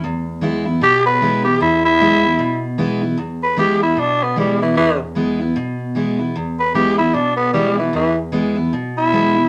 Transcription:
0.04 steel-string acoustic guitar E2
0.41 steel-string acoustic guitar E3 G#3 B3 E4
0.65 steel-string acoustic guitar B3 E4
0.81 steel-string acoustic guitar B2, tenor saxophone G4
1.06 tenor saxophone B4
1.21 steel-string acoustic guitar E3 G#3 B3 E4
1.43 steel-string acoustic guitar B3 E4, tenor saxophone G4
1.60 steel-string acoustic guitar E2, tenor saxophone E4
1.85 tenor saxophone E4
2.00 steel-string acoustic guitar E3 G#3 B3 E4
2.23 steel-string acoustic guitar B3 E4
2.39 steel-string acoustic guitar B2
2.78 steel-string acoustic guitar E3 G#3 B3 E4
3.01 steel-string acoustic guitar B3 E4
3.17 steel-string acoustic guitar E2
3.43 tenor saxophone B4
3.57 steel-string acoustic guitar E3 G#3 B3 E4, tenor saxophone G4
3.80 steel-string acoustic guitar B3 E4, tenor saxophone E4
3.96 steel-string acoustic guitar B2, tenor saxophone D4
4.23 tenor saxophone B3
4.36 steel-string acoustic guitar E3 G#3 B3 E4, tenor saxophone G3
4.59 tenor saxophone E3, steel-string acoustic guitar B3 E4
4.75 steel-string acoustic guitar E2, tenor saxophone E3
5.15 steel-string acoustic guitar E3 G#3 B3 E4
5.39 steel-string acoustic guitar B3 E4
5.56 steel-string acoustic guitar B2
5.95 steel-string acoustic guitar E3 G#3 B3 E4
6.19 steel-string acoustic guitar B3 E4
6.36 steel-string acoustic guitar E2
6.60 tenor saxophone B4
6.74 steel-string acoustic guitar E3 G#3 B3 E4, tenor saxophone G4
6.98 steel-string acoustic guitar B3 E4, tenor saxophone E4
7.14 steel-string acoustic guitar B2, tenor saxophone D4
7.37 tenor saxophone B3
7.54 steel-string acoustic guitar E3 G#3 B3 E4, tenor saxophone G3
7.77 tenor saxophone E3, steel-string acoustic guitar B3 E4
7.93 steel-string acoustic guitar E2, tenor saxophone E3
8.32 steel-string acoustic guitar E3 G#3 B3 E4
8.55 steel-string acoustic guitar B3 E4
8.73 steel-string acoustic guitar B2
8.97 tenor saxophone E4
9.12 steel-string acoustic guitar E3 G#3 B3 E4
9.35 steel-string acoustic guitar B3 E4

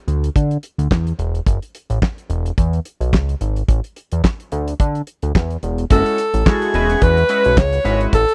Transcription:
0.08 analog synth bass D2, closed hi-hat
0.24 closed hi-hat
0.36 analog synth bass D3, kick, closed hi-hat
0.51 closed hi-hat
0.63 closed hi-hat
0.78 analog synth bass D2, closed hi-hat
0.91 analog synth bass E2, kick, snare, clap
1.07 closed hi-hat
1.19 analog synth bass E1, closed hi-hat
1.35 closed hi-hat
1.46 analog synth bass F#1, kick, closed hi-hat
1.62 closed hi-hat
1.75 closed hi-hat
1.90 analog synth bass A1, closed hi-hat
2.02 kick, snare, clap
2.18 closed hi-hat
2.30 analog synth bass E1, closed hi-hat
2.46 closed hi-hat
2.58 analog synth bass E2, kick, closed hi-hat
2.73 closed hi-hat
2.85 closed hi-hat
3.00 analog synth bass B1, closed hi-hat
3.13 analog synth bass C#2, kick, snare, clap
3.29 closed hi-hat
3.41 analog synth bass G#1, closed hi-hat
3.56 closed hi-hat
3.68 analog synth bass A1, kick, closed hi-hat
3.84 closed hi-hat
3.96 closed hi-hat
4.12 analog synth bass E2, closed hi-hat
4.24 kick, snare, clap
4.40 closed hi-hat
4.52 analog synth bass D2, closed hi-hat
4.68 closed hi-hat
4.80 analog synth bass D3, kick, closed hi-hat
4.95 closed hi-hat
5.07 closed hi-hat
5.22 analog synth bass D2, closed hi-hat
5.35 analog synth bass E2, kick, snare, clap
5.50 closed hi-hat
5.63 analog synth bass E1, closed hi-hat
5.78 closed hi-hat
5.90 analog synth bass F#1, analog polysynth G#3 C#4 E4 F#4 A4, alto saxophone A4, kick, closed hi-hat
6.06 closed hi-hat
6.18 closed hi-hat
6.34 analog synth bass A1, closed hi-hat
6.46 analog polysynth G#3 C#4 E4 F#4 A4, alto saxophone G#4, kick, snare, clap
6.62 closed hi-hat
6.74 analog synth bass E1, analog polysynth G#3 C#4 E4 F#4 B4, closed hi-hat
6.90 closed hi-hat
7.02 analog synth bass E2, alto saxophone B4, kick, closed hi-hat
7.17 closed hi-hat
7.29 analog polysynth G#3 C#4 E4 F#4 B4, closed hi-hat
7.44 analog synth bass B1, closed hi-hat
7.57 analog synth bass C#2, alto saxophone C#5, kick, snare, clap
7.72 analog polysynth F#4 B4, closed hi-hat
7.84 analog synth bass G#1, analog polysynth G#3 C#4 E4 F#4 B4, closed hi-hat
8.01 closed hi-hat
8.13 analog synth bass A1, alto saxophone A4, kick, closed hi-hat
8.29 closed hi-hat

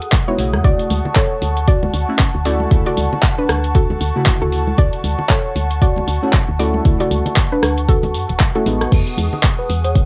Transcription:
Already playing: analog synth pad G#4 F#5 D#6
0.02 closed hi-hat
0.12 kick, clap, closed hi-hat, high conga
0.28 synth stab G#3 B3 D#4 F#4, synth pluck E4 C#5
0.38 fm bass B1, synth stab C#3 A3 E4 F#4, open hi-hat
0.53 fm bass E2, cross-stick, high conga
0.64 fm bass D2, synth pluck F#4 D5, analog synth pad A5 C#6, kick, closed hi-hat
0.80 closed hi-hat
0.90 fm bass D2, open hi-hat, high conga
1.05 low conga
1.16 synth pluck A4 C#5, kick, clap, closed hi-hat
1.42 fm bass D2, open hi-hat, high conga
1.57 closed hi-hat
1.68 synth pluck F#4 D5, kick, closed hi-hat
1.83 high conga, low conga
1.94 fm bass D2, open hi-hat
2.09 synth stab A3 C#4 E4 F#4
2.19 kick, clap, closed hi-hat, high conga
2.35 fm bass D2
2.45 synth stab A3 C#4 E4 A4, synth pluck F#4 D5, open hi-hat
2.60 high conga
2.71 fm bass D2, synth stab C#3 A3 E4 A4, kick, closed hi-hat
2.86 synth pluck F#4 D5, closed hi-hat
2.97 fm bass D2, open hi-hat, high conga
3.13 low conga
3.23 kick, clap, closed hi-hat
3.38 synth pluck D4 B4
3.49 fm bass D2, cross-stick, open hi-hat, high conga
3.64 closed hi-hat
3.75 synth pluck F#4 A4, kick, closed hi-hat
3.90 high conga, low conga
4.00 fm bass D2, open hi-hat
4.15 synth stab C#3 A3 E4 F#4
4.26 kick, clap, closed hi-hat, high conga
4.42 fm bass D2, synth pluck F#4 A4
4.52 open hi-hat
4.67 high conga
4.78 fm bass D2, synth pluck F#4 D5, kick, closed hi-hat
4.93 closed hi-hat
5.04 fm bass D2, open hi-hat, high conga
5.19 low conga
5.29 synth pluck A4 C#5, kick, clap, closed hi-hat
5.56 fm bass D2, open hi-hat, high conga
5.71 closed hi-hat
5.82 synth pluck F#4 D5, kick, closed hi-hat
5.96 high conga, low conga
6.08 fm bass D2, open hi-hat
6.22 synth stab A3 C#4 E4 F#4
6.33 kick, clap, closed hi-hat, high conga
6.48 fm bass D2
6.59 synth stab A3 C#4 E4 A4, synth pluck F#4 D5, open hi-hat
6.74 high conga
6.85 fm bass D2, synth stab C#3 A3 E4 A4, kick, closed hi-hat
7.00 synth pluck F#4 D5, closed hi-hat
7.11 fm bass D2, open hi-hat, high conga
7.26 closed hi-hat, low conga
7.36 kick, clap, closed hi-hat
7.52 synth pluck D4 B4
7.63 fm bass D2, cross-stick, open hi-hat, high conga
7.78 closed hi-hat
7.89 synth pluck F#4 A4, kick, closed hi-hat
8.03 closed hi-hat, high conga, low conga
8.14 fm bass F#2, open hi-hat
8.29 fm bass D1, closed hi-hat
8.40 kick, clap, closed hi-hat, high conga
8.55 synth stab A3 C#4 E4 F#4, synth pluck F#4 A4, closed hi-hat
8.66 fm bass A1, synth stab G#3 B3 D#4 F#4, open hi-hat
8.81 cross-stick, closed hi-hat, high conga
8.92 fm bass E2, analog synth pad G#4 F#5 D#6, kick, closed hi-hat, crash
9.07 closed hi-hat
9.17 fm bass E2, open hi-hat, high conga
9.33 low conga
9.43 kick, clap, closed hi-hat
9.59 fm electric piano B4
9.70 fm bass E2, open hi-hat, high conga
9.85 fm electric piano C#5, closed hi-hat
9.96 kick, closed hi-hat

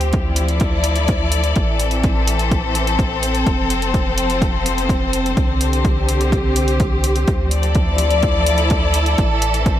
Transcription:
Already playing: sub bass D2, string section F3 C4 G4 C5
0.01 closed hi-hat
0.13 string section E4, kick, closed hi-hat
0.27 string section D5
0.36 closed hi-hat
0.48 closed hi-hat
0.53 string section A4
0.60 kick, closed hi-hat
0.84 closed hi-hat
0.96 closed hi-hat
1.08 kick, closed hi-hat
1.32 closed hi-hat
1.44 closed hi-hat
1.56 sub bass A1, string section E3, kick, closed hi-hat
1.74 string section C4
1.80 closed hi-hat
1.91 string section C5, closed hi-hat
2.04 kick, closed hi-hat
2.27 closed hi-hat
2.39 closed hi-hat
2.51 kick, closed hi-hat
2.75 closed hi-hat
2.87 closed hi-hat
2.99 kick, closed hi-hat
3.23 closed hi-hat
3.35 closed hi-hat
3.46 sub bass F1, string section F3, kick, closed hi-hat
3.70 closed hi-hat
3.82 closed hi-hat
3.94 kick, closed hi-hat
4.18 closed hi-hat
4.30 closed hi-hat
4.42 kick, closed hi-hat
4.66 closed hi-hat
4.78 closed hi-hat
4.89 kick, closed hi-hat
5.13 closed hi-hat
5.26 closed hi-hat
5.36 sub bass C2, string section D3, kick, closed hi-hat
5.55 string section G4
5.61 closed hi-hat
5.73 closed hi-hat
5.85 kick, closed hi-hat
6.09 closed hi-hat
6.21 closed hi-hat
6.32 kick, closed hi-hat
6.56 closed hi-hat
6.68 closed hi-hat
6.80 kick, closed hi-hat
7.04 closed hi-hat
7.16 closed hi-hat
7.28 sub bass D2, string section F3, kick, closed hi-hat
7.50 string section D5, closed hi-hat
7.58 string section A4
7.63 closed hi-hat
7.75 kick, closed hi-hat
7.79 string section E4
7.98 closed hi-hat
8.11 closed hi-hat
8.23 kick, closed hi-hat
8.46 closed hi-hat
8.58 closed hi-hat
8.70 kick, closed hi-hat
8.94 closed hi-hat
9.06 closed hi-hat
9.18 sub bass A1, string section E3, kick, closed hi-hat
9.42 closed hi-hat
9.54 string section C4, closed hi-hat
9.64 string section C5, kick, closed hi-hat

